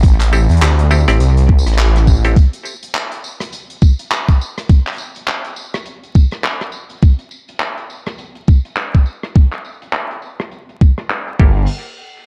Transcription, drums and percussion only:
0.03 kick, closed hi-hat, tambourine
0.20 clap, closed hi-hat, tambourine
0.33 tambourine
0.49 closed hi-hat, tambourine
0.51 closed hi-hat
0.57 closed hi-hat
0.62 clap, closed hi-hat, tambourine
0.79 closed hi-hat, tambourine
0.91 tambourine
1.08 cross-stick, closed hi-hat, tambourine
1.20 closed hi-hat, tambourine
1.37 closed hi-hat, tambourine
1.49 kick
1.59 tambourine
1.66 cross-stick, closed hi-hat, tambourine
1.73 cross-stick
1.78 cross-stick, clap, closed hi-hat, tambourine
1.87 cross-stick
1.96 cross-stick, closed hi-hat, tambourine
2.07 kick, tambourine
2.24 closed hi-hat, tambourine
2.36 kick, closed hi-hat, tambourine
2.53 closed hi-hat, tambourine
2.65 tambourine
2.83 closed hi-hat, tambourine
2.95 clap, closed hi-hat
3.11 closed hi-hat, tambourine
3.24 tambourine
3.40 cross-stick, closed hi-hat, tambourine
3.52 closed hi-hat, tambourine
3.70 closed hi-hat, tambourine
3.82 kick, tambourine
3.99 closed hi-hat, tambourine
4.11 clap, closed hi-hat, tambourine
4.28 kick, closed hi-hat, tambourine
4.41 tambourine
4.57 cross-stick, closed hi-hat, tambourine
4.69 kick, closed hi-hat, tambourine
4.86 clap, closed hi-hat, tambourine
4.89 closed hi-hat
4.93 closed hi-hat
4.95 closed hi-hat
4.96 closed hi-hat, tambourine
5.15 closed hi-hat, tambourine
5.27 clap, closed hi-hat, tambourine
5.44 closed hi-hat, tambourine
5.56 tambourine
5.74 cross-stick, closed hi-hat, tambourine
5.86 closed hi-hat, tambourine
6.03 closed hi-hat, tambourine
6.15 kick, tambourine
6.31 cross-stick, closed hi-hat, tambourine
6.44 clap, tambourine
6.61 cross-stick, closed hi-hat, tambourine
6.72 tambourine
6.89 closed hi-hat, tambourine
7.02 kick, closed hi-hat, tambourine
7.19 closed hi-hat, tambourine
7.31 tambourine
7.48 closed hi-hat, tambourine
7.60 clap, closed hi-hat, tambourine
7.78 closed hi-hat, tambourine
7.90 tambourine
8.06 cross-stick, closed hi-hat, tambourine
8.18 closed hi-hat, tambourine
8.35 closed hi-hat, tambourine
8.47 kick, tambourine
8.65 closed hi-hat, tambourine
8.76 clap, closed hi-hat, tambourine
8.94 kick, closed hi-hat, tambourine
9.06 tambourine
9.23 cross-stick, closed hi-hat, tambourine
9.35 kick, closed hi-hat, tambourine
9.52 clap, closed hi-hat, tambourine
9.65 tambourine
9.82 closed hi-hat, tambourine
9.92 clap, closed hi-hat, tambourine
10.11 closed hi-hat, tambourine
10.22 tambourine
10.40 cross-stick, closed hi-hat, tambourine
10.52 closed hi-hat, tambourine
10.69 closed hi-hat, tambourine
10.81 kick, tambourine
10.98 cross-stick, closed hi-hat, tambourine
11.10 clap, closed hi-hat, tambourine
11.27 closed hi-hat, tambourine
11.39 kick, crash

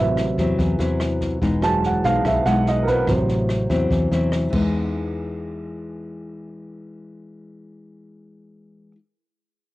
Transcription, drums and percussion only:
0.17 cross-stick, snare
0.38 kick, snare
0.59 kick, snare
0.79 snare
1.00 cross-stick, snare
1.21 kick, snare
1.42 kick, snare
1.62 cross-stick, snare
1.83 snare
2.04 kick, snare
2.25 kick, cross-stick, snare
2.46 snare
2.66 snare
2.87 kick, snare
3.07 kick, cross-stick, snare
3.29 snare
3.49 cross-stick, snare
3.70 kick, snare
3.91 kick, snare
4.12 snare
4.32 cross-stick, snare
4.53 kick, crash

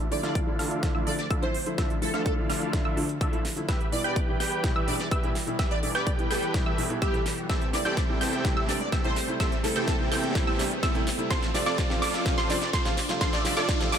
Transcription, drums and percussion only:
0.12 open hi-hat
0.24 snare, closed hi-hat
0.35 kick, closed hi-hat
0.59 snare, open hi-hat
0.71 closed hi-hat
0.83 kick, snare, closed hi-hat
1.07 open hi-hat
1.19 snare, closed hi-hat
1.31 kick, closed hi-hat
1.43 closed hi-hat
1.54 open hi-hat
1.66 closed hi-hat
1.78 kick, snare, closed hi-hat
1.90 closed hi-hat
2.02 open hi-hat
2.14 snare, closed hi-hat
2.26 kick, closed hi-hat
2.50 snare, open hi-hat
2.62 closed hi-hat
2.73 kick, snare, closed hi-hat
2.97 open hi-hat
3.09 closed hi-hat
3.21 kick, closed hi-hat
3.33 closed hi-hat
3.45 snare, open hi-hat
3.57 closed hi-hat
3.69 kick, snare, closed hi-hat
3.81 closed hi-hat
3.92 open hi-hat
4.04 closed hi-hat
4.16 kick, closed hi-hat
4.40 snare, open hi-hat
4.52 closed hi-hat
4.64 kick, snare, closed hi-hat
4.88 open hi-hat
5.00 snare, closed hi-hat
5.11 kick, closed hi-hat
5.23 closed hi-hat
5.35 snare, open hi-hat
5.47 closed hi-hat
5.59 kick, snare, closed hi-hat
5.71 closed hi-hat
5.83 open hi-hat
5.95 snare, closed hi-hat
6.07 kick, closed hi-hat
6.19 closed hi-hat
6.31 snare, open hi-hat
6.42 closed hi-hat
6.54 kick, snare, closed hi-hat
6.78 open hi-hat
6.90 closed hi-hat
7.02 kick, closed hi-hat
7.14 closed hi-hat
7.26 snare, open hi-hat
7.38 closed hi-hat
7.50 kick, snare, closed hi-hat
7.61 closed hi-hat
7.73 snare, open hi-hat
7.85 closed hi-hat
7.97 kick, snare, closed hi-hat
8.21 snare, open hi-hat
8.33 closed hi-hat
8.45 kick, snare, closed hi-hat
8.69 snare, open hi-hat
8.81 closed hi-hat
8.92 kick, snare, closed hi-hat
9.04 closed hi-hat
9.16 snare, open hi-hat
9.28 closed hi-hat
9.40 kick, snare, closed hi-hat
9.52 closed hi-hat
9.64 snare, open hi-hat
9.76 closed hi-hat
9.88 kick, snare, closed hi-hat
10.12 snare, open hi-hat
10.24 closed hi-hat
10.35 kick, snare, closed hi-hat
10.59 snare, open hi-hat
10.71 closed hi-hat
10.83 kick, snare, closed hi-hat
10.95 closed hi-hat
11.07 snare, open hi-hat
11.19 closed hi-hat
11.31 kick, snare, closed hi-hat
11.43 snare, closed hi-hat
11.54 snare, open hi-hat
11.66 snare, closed hi-hat
11.78 kick, snare, closed hi-hat
11.90 snare
12.02 snare, open hi-hat
12.14 snare, closed hi-hat
12.26 kick, snare, closed hi-hat
12.38 snare
12.50 snare, open hi-hat
12.62 snare, closed hi-hat
12.73 kick, snare, closed hi-hat
12.85 snare, closed hi-hat
12.97 snare, open hi-hat
13.09 snare, closed hi-hat
13.21 kick, snare, closed hi-hat
13.33 snare, closed hi-hat
13.45 snare, open hi-hat
13.57 snare, closed hi-hat
13.69 kick, snare, closed hi-hat
13.81 snare, closed hi-hat
13.92 snare, open hi-hat

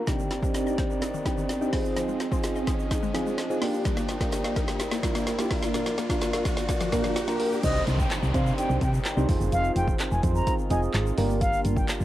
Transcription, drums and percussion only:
0.07 kick, snare, closed hi-hat, shaker
0.19 shaker
0.31 snare, closed hi-hat, shaker
0.43 kick, shaker
0.54 snare, closed hi-hat, shaker
0.67 shaker
0.78 kick, snare, closed hi-hat, shaker
0.90 shaker
1.02 snare, closed hi-hat, shaker
1.14 shaker
1.26 kick, snare, closed hi-hat, shaker
1.38 shaker
1.49 snare, closed hi-hat, shaker
1.62 shaker
1.73 kick, snare, open hi-hat
1.85 shaker
1.97 snare, closed hi-hat, shaker
2.08 shaker
2.20 snare, closed hi-hat, shaker
2.32 kick, shaker
2.44 snare, closed hi-hat, shaker
2.56 shaker
2.67 kick, snare, closed hi-hat, shaker
2.79 shaker
2.91 kick, snare, closed hi-hat, shaker
3.03 shaker
3.14 snare, closed hi-hat, shaker
3.27 shaker
3.38 snare, closed hi-hat, shaker
3.50 shaker
3.62 snare, open hi-hat
3.74 shaker
3.85 kick, snare, closed hi-hat, shaker
3.97 snare, shaker
4.08 snare, closed hi-hat, shaker
4.21 kick, snare, shaker
4.32 snare, closed hi-hat, shaker
4.44 snare, shaker
4.56 kick, snare, closed hi-hat, shaker
4.68 snare, shaker
4.80 snare, closed hi-hat, shaker
4.91 snare, shaker
5.03 kick, snare, closed hi-hat, shaker
5.15 snare, shaker
5.27 snare, closed hi-hat, shaker
5.39 snare, shaker
5.51 kick, snare, open hi-hat
5.63 snare, shaker
5.74 snare, closed hi-hat, shaker
5.86 snare, shaker
5.98 snare, closed hi-hat, shaker
6.10 kick, snare, shaker
6.21 snare, closed hi-hat, shaker
6.33 snare, shaker
6.45 kick, snare, closed hi-hat, shaker
6.57 snare, shaker
6.69 kick, snare, closed hi-hat, shaker
6.80 snare, closed hi-hat, shaker
6.92 kick, snare, closed hi-hat, shaker
7.04 snare, closed hi-hat, shaker
7.16 snare, closed hi-hat, shaker
7.28 snare, shaker
7.40 open hi-hat
7.52 shaker
7.63 kick, closed hi-hat, crash, shaker
7.75 shaker
7.87 closed hi-hat, shaker
7.99 kick, shaker
8.10 snare, clap, closed hi-hat, shaker
8.23 shaker
8.34 kick, closed hi-hat, shaker
8.46 shaker
8.58 closed hi-hat, shaker
8.70 shaker
8.81 kick, closed hi-hat, shaker
8.94 shaker
9.05 snare, clap, closed hi-hat, shaker
9.18 shaker
9.29 kick, open hi-hat, shaker
9.41 shaker
9.52 closed hi-hat, shaker
9.64 shaker
9.76 closed hi-hat, shaker
9.88 kick, shaker
9.99 snare, clap, closed hi-hat, shaker
10.11 shaker
10.23 kick, closed hi-hat, shaker
10.35 shaker
10.47 kick, closed hi-hat, shaker
10.59 shaker
10.70 closed hi-hat, shaker
10.83 shaker
10.94 snare, clap, closed hi-hat, shaker
11.06 shaker
11.18 open hi-hat, shaker
11.30 shaker
11.41 kick, closed hi-hat, shaker
11.53 shaker
11.65 closed hi-hat, shaker
11.77 kick, shaker
11.88 snare, clap, closed hi-hat, shaker
12.00 shaker

